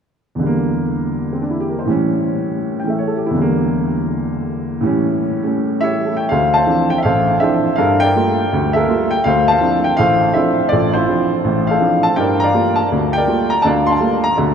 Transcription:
grand piano
0.35 E2 D3
0.43 G3 A#3
1.33 C4
1.42 D4
1.51 E4
1.60 G4
1.70 A#4
1.79 C5
1.85 A2 E3 G3
1.90 C#4
2.80 G5
2.84 E3 A3
2.90 E5
2.98 C#5
3.08 A4
3.17 G4
3.26 E4
3.31 E2 D3
3.38 G3 A#3
4.81 A2 E3 G3
4.86 C#4
5.43 G3 A3 C#4
5.81 E4 G4 C#5 E5
5.93 G4
6.06 A4
6.17 C#5 G5
6.29 D2 A4 C5 F5
6.54 C5 F5 A5
6.66 E3 F3 C4 D4
6.90 G5
6.98 E5
7.03 A1 A4 C5 F5
7.40 E3 F3 C4 D4 A4 C5 E5
7.76 G2 A4 A#4 F5
8.00 A#4 D5 G5
8.15 G3 A3 A#3 F4
8.52 D2
8.73 A4 A#4 E5
8.88 G3 A3 A#3 F4
9.11 G5
9.24 D2 A4 C5 F5
9.48 C5 F5 A5
9.61 F3 C4 D4 E4
9.84 G5
9.97 A1 A2 A4 C5 F5
10.34 F3 C4 D4 E4 A4 C5 E5
10.69 A1 F4 A4 D5
10.94 E4 F4 C5
11.09 F3 C4 D4 E4
11.44 A1 A2
11.67 A4 C5 F5
11.81 F3 C4 D4 E4
12.03 A5
12.16 G2 A#4 D5 G5
12.40 D5 F5 A#5
12.54 G3 A3 A#3 F4
12.76 A5
12.92 D2
13.13 G5
13.17 A#4 D5
13.27 G3 A3 A#3 F4
13.50 A#5
13.62 D2 D3 F5 A5
13.66 D5
13.86 F5 C6
13.91 A5
14.00 G3 A3 A#3 F4
14.24 A#5
14.37 D2 D3

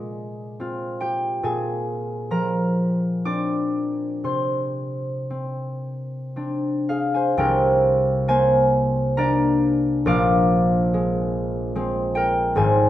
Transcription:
harp
Already playing: A#2 G#3 A#3 D4 F4 G#4 A#4 D5 A#5 D6
0.60 C4 F4
1.01 G4 G5
1.43 A#2 G#4 G#5
2.31 F3 A#4 A#5
3.25 C4 D4 D5 D6
4.24 C3 C5 C6
5.30 C4
6.36 C4 D4
6.89 G#4 F5
7.14 C5 G#5
7.37 C2 C3 A#4 G5
8.28 A#3 C5 G#5
9.17 A#3 D4 D5 A#5
10.06 A#1 A#2 F5 D6
10.94 G#3
11.75 G#3 C4
12.15 A#4 G5
12.55 G#1 G#2 C5 G#5

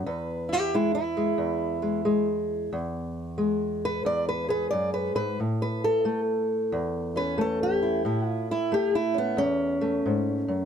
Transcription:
steel-string acoustic guitar
0.06 E2 B4
0.49 E4
0.53 G4
0.74 G#3 E4
0.95 E4
1.17 G#3
1.38 E2
1.82 G#3
2.05 G#3
2.73 E2
3.38 G#3
3.85 B4
4.05 E2 D5
4.29 B4
4.48 G#4 B4
4.71 F#2 D5
4.94 B4
5.15 G#2 B4
5.40 A2
5.62 B4
5.84 A4
6.05 A3
6.72 E2
7.16 C#4 B4
7.38 A3 A4
7.63 G4
7.82 E4
8.05 A2 E4
8.27 F4
8.51 E4
8.72 A3 G4
8.95 E4
9.14 B3 C#4
9.37 E2 C#4
9.81 A3
10.06 G#2
10.48 F#2

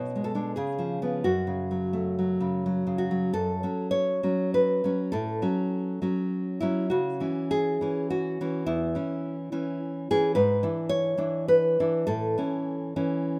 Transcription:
nylon-string guitar
Already playing: B2 C#5
0.16 G#3
0.24 A4
0.35 G#3 D4
0.56 C#3 G#4
0.79 F3
1.02 F3 B3
1.24 F#2 F#4
1.47 C#3
1.71 F#3
1.93 A3
2.19 F#3
2.40 C#3
2.66 F#3
2.87 C#3
2.98 F#4
3.11 F#3
3.33 F#2 A4
3.63 F#3 C#4
3.91 C#5
4.23 F#3 C#4
4.54 B4
4.84 F#3 C#4
5.12 A2 A4
5.42 F#3 C#4
6.02 F#3 C#4
6.60 F#3 C#4 E4
6.90 C#3 F#4
7.20 E3 C#4
7.51 G#4
7.81 E3 C#4
8.10 F#4
8.41 E3 C#4
8.66 E2 E4
8.95 E3 C#4
9.52 E3 C#4
10.11 E3 C#4 G#4
10.35 G#2 B4
10.63 E3 D4
10.89 C#5
11.18 E3 D4
11.48 B4
11.80 E3 D4
12.07 A2 A4
12.38 E3 C#4
12.96 E3 C#4

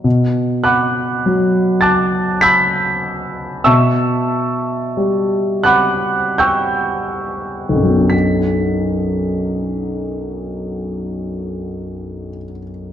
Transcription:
grand piano
0.04 B2
0.64 F#5 B5 D6 F#6
1.26 F#3
1.81 A5 D6 F#6 A6
2.41 B5 E6 G6 B6
3.64 B2 E5 A5 C#6 E6
4.97 G3
5.63 F#5 B5 D6 F#6
6.38 G5 C#6 E6 G6
7.69 B1
7.76 F#2
7.83 F#3
7.90 B3
7.97 D4
8.05 F#4
8.10 B6

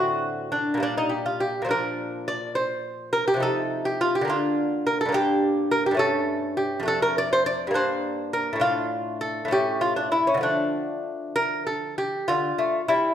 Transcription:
lute
Already playing: A2 D3 C4 F#4
0.52 D4
0.74 A#2 G3
0.80 A#3 D4
0.97 D#4
1.09 G4
1.26 F4
1.40 G4
1.62 A#2 C5
1.66 F3 D4
1.71 A#4
2.28 D5
2.55 C5
3.13 A#4
3.28 G4
3.34 C3 F3
3.40 D#4 A4
3.85 G4
4.01 F4
4.15 G4
4.21 D3 A#3
4.28 D4 F4
4.87 A#4
5.01 A4
5.05 G2 A#3
5.12 D4 G4
5.71 A#4
5.86 G4
5.91 G2 A3
5.97 C#4 A4
6.57 G4
6.80 F2 A3
6.85 D4 A4
7.02 A#4
7.18 D5
7.33 C5
7.46 D5
7.67 G2 A#3
7.74 D4 C5
8.33 A#4
8.53 A2 A3
8.60 D4 F4
9.21 A4
9.45 A2 A3
9.51 C#4 G4
9.81 F4
9.96 D4
10.12 E4
10.27 C#4
10.34 D3 F3
10.41 A3 D4
11.36 A#4
11.67 A4
11.98 G4
12.28 D3 F4
12.58 A3
12.88 G3 E4

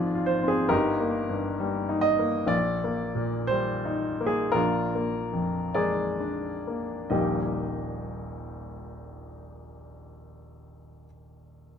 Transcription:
grand piano
Already playing: G#1 G#2 F3 C4 F4 G#4 D5
0.15 F4
0.26 C5
0.43 C4
0.48 G#4
0.69 G1 D#4 G4 A#4
1.00 A#3
1.29 G2
1.60 G3
1.89 D#4
2.01 D#5
2.19 A#3
2.47 A#1 D5
2.84 A#3
3.15 A#2
3.47 G3 C5
3.85 D#4
4.21 A#3
4.26 G#4
4.52 A#1 D4 F4 A#4
4.95 A#3
5.33 F2
5.74 G#3 G#4 A#4 D5
6.20 D4
6.67 A#3
7.10 D#1 A#1 G3 A#3 D#4 G4 D#5

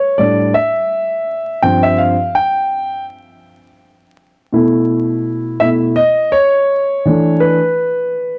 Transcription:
grand piano
Already playing: C#5
0.18 A2 G3 D4 D5
0.54 E5
1.63 G2 F3 C4 G5
1.83 E5
1.98 F5
2.35 G5
4.52 B2 A3 E4
5.60 B2 A3 E4 E5
5.96 D#5
6.32 C#5
7.05 E3 A3 D4
7.40 B4

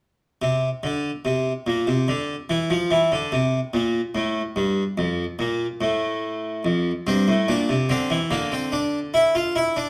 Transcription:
harpsichord
0.42 C3
0.83 D3
1.25 C3
1.67 A#2
1.87 C3
2.08 D3
2.50 E3
2.70 F3
2.91 E3
3.12 D3
3.32 C3
3.74 A#2
4.15 A2
4.56 G2
4.98 F2
5.39 A#2
5.81 A2
6.65 F2
7.07 G2 C4
7.28 A2
7.48 A#2 D4
7.69 C3
7.89 D3 C4
8.10 E3
8.31 D3 A#3
8.52 C4
8.72 D4
9.14 E4
9.35 F4
9.56 E4
9.77 D4

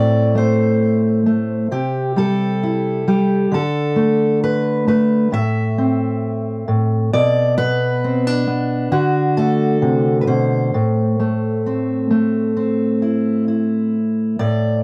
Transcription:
steel-string acoustic guitar
Already playing: A2 C4 E4 D5
0.35 A3 C5
1.26 A3
1.71 C3 G4
2.16 G3 A4
2.63 E4
3.08 G3 G4
3.52 D3 A4
3.96 A3
4.44 B4
4.87 A3 B4
5.32 A2 E5
5.78 C4
6.68 A2
7.13 B2 D5
7.58 B3 B4
8.04 C4
8.27 D4
8.47 B3
8.92 D3 F#4
9.37 A3 A4
9.82 C3
10.21 B4
10.27 B2 C5
10.74 A2
11.20 A3
11.66 C4
12.11 A3
12.57 C4
13.02 E4
13.48 E4
14.39 A2 D5

